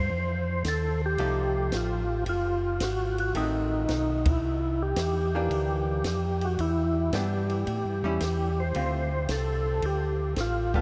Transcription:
Already playing: C5
0.10 F2
0.64 D#2 A4, kick, snare, hi-hat pedal, ride
1.06 G4
1.18 C2 F3 A3 D#4 G4, kick, ride
1.72 A1 F4, kick, snare, hi-hat pedal, ride
2.26 F#1 F4, kick, ride
2.80 G#1 F#4, kick, snare, hi-hat pedal, ride
3.18 F#4, ride
3.34 A1 D#3 A3 C4 D#4, kick, ride
3.89 B1, kick, snare, hi-hat pedal, ride
4.25 E4, kick, ride
4.42 C2
4.82 G4
4.96 E2, kick, snare, hi-hat pedal, ride
5.35 E3 A#3 D4 G4
5.50 D2, kick, ride
6.04 F2, kick, snare, hi-hat pedal, ride
6.41 F#4, ride
6.59 E2 E4, kick, ride
7.12 G2 E3 B3 D4 G4, kick, snare, hi-hat pedal, ride
7.50 ride
7.67 A2, kick, ride
7.84 G2
8.02 E2 G3 C#4 E4
8.20 E2, kick, snare, hi-hat pedal, ride
8.60 C5
8.74 D2 D3 A3 C4 F4, kick, ride
9.28 C2 A4, kick, snare, hi-hat pedal, ride
9.82 D2 G4, kick, ride
10.36 A1, kick, snare, hi-hat pedal, ride
10.41 F4
10.74 G3 B3 F4 A4, kick

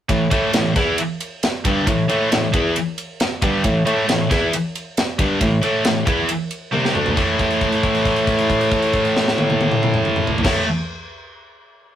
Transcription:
0.09 A2 E3, kick, ride
0.30 A2 E3 A3, kick, ride
0.53 A2 E3, snare, ride
0.76 E2 E3 B3 E4, kick, snare, ride
0.98 ride
1.20 ride
1.43 snare, ride
1.65 G2 D3 G3, kick, ride
1.87 A2 E3, kick, ride
2.09 A2 E3 A3, ride
2.31 A2 E3, snare, ride
2.53 E2 E3 B3 E4, kick, ride
2.76 ride
2.98 ride
3.20 snare, ride
3.42 G2 D3 G3, kick, ride
3.64 A2 E3, kick, ride
3.85 A2 E3 A3, ride
4.08 A2 E3, snare, ride
4.30 E2 E3 B3 E4, kick, snare, ride
4.53 ride
4.75 ride
4.97 snare, ride
5.19 G2 D3 G3, kick, ride
5.41 A2 E3, kick, ride
5.61 A2 E3 A3, ride
5.84 A2 E3, snare, ride
6.05 E2 E3 B3 E4, kick, ride
6.29 ride
6.51 ride
6.72 C2 C3 G3 C4, high tom
6.85 snare
6.94 D2 D3 A3 D4, mid tom
7.06 floor tom
7.15 A2 E3 A3, kick, crash
7.39 kick, crash
7.50 crash
7.61 kick, crash
7.72 crash
7.83 kick, crash
7.95 crash
8.05 kick, crash
8.16 crash
8.27 kick, crash
8.39 crash
8.50 kick, crash
8.61 crash
8.71 kick, crash
8.82 crash
8.93 kick, crash
9.05 crash
9.16 snare
9.28 snare
9.38 high tom
9.50 high tom
9.61 high tom
9.72 mid tom
9.83 mid tom
9.94 mid tom
10.05 mid tom
10.16 mid tom
10.27 floor tom
10.38 floor tom
10.43 A2 E3, kick, snare, crash
10.47 A3

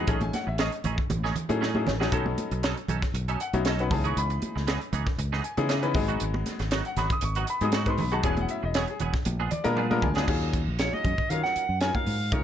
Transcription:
0.07 A1 F#3 A3 C#4 D#4 G#4, kick, closed hi-hat
0.21 G#5, muted clean electric guitar stroke, closed hi-hat, high conga
0.33 F#5, snare, closed hi-hat, high conga
0.47 A1 E5, muted clean electric guitar stroke
0.58 A3 C#4 D#4 G#4 D#5, snare, closed hi-hat
0.72 muted clean electric guitar stroke, closed hi-hat
0.84 A1 A3 C#4 D#4 G#4, closed hi-hat, low conga
0.98 muted clean electric guitar stroke, kick
1.10 A1, muted clean electric guitar stroke, closed hi-hat, high conga, low conga
1.24 A3 C#4 D#4 G#4, snare
1.36 muted clean electric guitar stroke, closed hi-hat, low conga
1.49 A2 F#3 A3 C#4 D#4 G#4, muted clean electric guitar stroke, closed hi-hat, high conga
1.61 A3 C#4 D#4 G#4, snare
1.75 F#3 A3 C#4 D#4 G#4, high conga
1.86 A1, muted clean electric guitar stroke, snare, low conga
2.00 F#3 A3 C#4 D#4 F#4 G#4, snare
2.12 B1 F#3 B3 C#4 D#4 A4, kick, closed hi-hat
2.26 muted clean electric guitar stroke, high conga
2.38 closed hi-hat, high conga
2.51 B1, muted clean electric guitar stroke, closed hi-hat
2.63 F#3 C#4 D#4 A4, snare, closed hi-hat
2.77 muted clean electric guitar stroke, closed hi-hat
2.88 B1 F#3 C#4 D#4 A4, closed hi-hat, low conga
3.02 muted clean electric guitar stroke, kick, snare, closed hi-hat
3.14 B1, muted clean electric guitar stroke, closed hi-hat
3.28 F#3 C#4 D#4 A4 G#5, closed hi-hat
3.40 F#5, muted clean electric guitar stroke, closed hi-hat
3.53 B1 F#3 B3 C#4 D#4 F#4 E5, muted clean electric guitar stroke, closed hi-hat, high conga
3.65 F#3 C#4 D#4 A4 D#5, snare, closed hi-hat
3.79 F#3 B3 C#4 D#4 B4 F#5, closed hi-hat
3.91 C#2 E3 B3 C#4 D#4 G#4 A5, muted clean electric guitar stroke, kick, open hi-hat, low conga
4.04 B3 D#4 G#4 C#6, closed hi-hat
4.17 C#2 B5, closed hi-hat
4.30 muted clean electric guitar stroke, closed hi-hat
4.42 closed hi-hat, high conga
4.56 C#2, muted clean electric guitar stroke, snare
4.67 E3 B3 D#4 G#4, snare, closed hi-hat
4.81 muted clean electric guitar stroke, closed hi-hat
4.93 C#2 E3 B3 D#4 G#4, closed hi-hat, low conga
5.07 muted clean electric guitar stroke, kick, snare
5.18 C#2, muted clean electric guitar stroke, closed hi-hat
5.33 E3 B3 D#4 G#4, snare
5.44 G#5, muted clean electric guitar stroke, closed hi-hat
5.57 C#3 E3 B3 C#4 D#4 G#4, muted clean electric guitar stroke, closed hi-hat, high conga
5.69 E3 B3 D#4 G#4 E5, snare, closed hi-hat
5.82 E3 B3 C#4 D#4 B4, closed hi-hat
5.94 G#1 F#3 G#3 B3 D#4 G#4 D#5, muted clean electric guitar stroke, kick, open hi-hat, low conga
6.08 B3 D#4 F#4, closed hi-hat
6.20 G#1, closed hi-hat
6.34 muted clean electric guitar stroke, high conga
6.46 snare, closed hi-hat, high conga
6.59 G#1, muted clean electric guitar stroke, snare, closed hi-hat
6.71 F#3 B3 D#4 F#4, snare, closed hi-hat
6.85 F#5, muted clean electric guitar stroke, closed hi-hat
6.97 G#1 F#3 B3 D#4 F#4 B5, snare, closed hi-hat, low conga
7.10 D#6, muted clean electric guitar stroke, kick, closed hi-hat
7.21 G#1 C#6, muted clean electric guitar stroke, closed hi-hat
7.35 F#3 B3 D#4 F#4 F#5, closed hi-hat
7.47 B5, muted clean electric guitar stroke, closed hi-hat
7.61 G#2 F#3 G#3 B3 D#4 G#4, muted clean electric guitar stroke, closed hi-hat, high conga
7.65 D#6
7.72 F#3 B3 D#4 F#4, snare, closed hi-hat
7.76 C#6
7.86 F#3 G#3 B3 D#4 B4, kick, closed hi-hat
7.90 C6
7.98 B1 B5, muted clean electric guitar stroke, open hi-hat, low conga
8.11 F#3 G#3 B3 D#4 F#4 G#4 A5, closed hi-hat
8.23 E1 F#3 B3 C#4 E4 G#4 G#5, kick, closed hi-hat
8.37 F#5, muted clean electric guitar stroke, closed hi-hat, high conga
8.49 E5, closed hi-hat
8.63 E1 D#5, muted clean electric guitar stroke
8.74 F#3 B3 C#4 G#4 C#5, snare, closed hi-hat
8.88 G#4, muted clean electric guitar stroke, closed hi-hat
9.00 E1 F#3 B3 C#4 G#4, closed hi-hat, low conga
9.14 muted clean electric guitar stroke, kick, snare
9.25 A#1, muted clean electric guitar stroke, closed hi-hat, high conga
9.40 F3 B3 D4 G#4
9.51 D5, muted clean electric guitar stroke, closed hi-hat, low conga
9.64 A#2 G#3 B3 D4 F4 A#4, muted clean electric guitar stroke, closed hi-hat, high conga
9.77 F3 B3 D4 G#4 F5, high tom
9.91 G#3 B3 D4 F4 A#4, high conga
10.02 D2 G#5, muted clean electric guitar stroke, kick, low conga
10.16 G#3 B3 D4 F4 G#4, snare
10.28 D#2 F#3 C#4 D#4 F4 G#4, kick, crash
10.53 kick, closed hi-hat
10.67 A#1
10.79 F#3 C#4 D#4 F4 G#4 C#5, snare, closed hi-hat
10.93 D#5, high conga
11.04 F#2, kick, closed hi-hat, low conga
11.18 kick
11.30 D#3 F#3 C#4 D#4 F4 A#4 F5, closed hi-hat
11.43 F#5, snare
11.56 muted fingered electric bass stroke, closed hi-hat
11.69 F#2
11.81 F#3 C#4 D#4 F4 A#4 G#5, snare, closed hi-hat
11.95 F5, kick, high conga
12.06 G#2, open hi-hat
12.32 C#2 G#3 C#4 D#4 F4 A#4 C#5, kick, closed hi-hat

